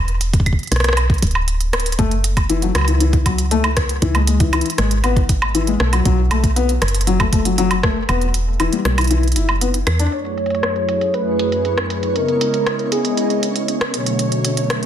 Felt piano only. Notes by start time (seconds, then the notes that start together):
1.99 A3
2.50 E3
2.62 F#3
2.75 F#3
2.88 E3
3.00 E3
3.26 F#3
3.51 A3
4.02 E3
4.15 G#3
4.28 G#3
4.40 E3
4.53 E3
4.78 G#3
5.04 B3
5.55 E3
5.67 G#3
5.80 A3
5.93 F#3
6.05 F#3
6.31 A3
6.56 B3
7.07 F#3
7.20 A3
7.33 A3
7.45 F#3
7.58 F#3
7.84 A3
8.09 B3
8.60 E3
8.72 G3
8.85 G3
8.98 E3
9.11 E3
9.36 E4
9.61 B3
10.00 D4